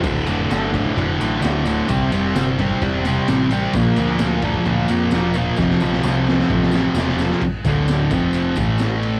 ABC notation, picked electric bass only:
X:1
M:4/4
L:1/8
Q:1/4=130
K:Dm
V:1 name="Picked electric bass" clef=bass
D,,, F,,, G,,,2 F,,, A,,, D,,,2 | C,, F,,, G,,,2 E,,,2 A,,,2 | B,,, D,, D,,2 D,, F,, E,,,2 | F,,, B,,, C,,2 A,,,2 E,,,2 |
z D,,,2 F,,,2 A,,,3 |]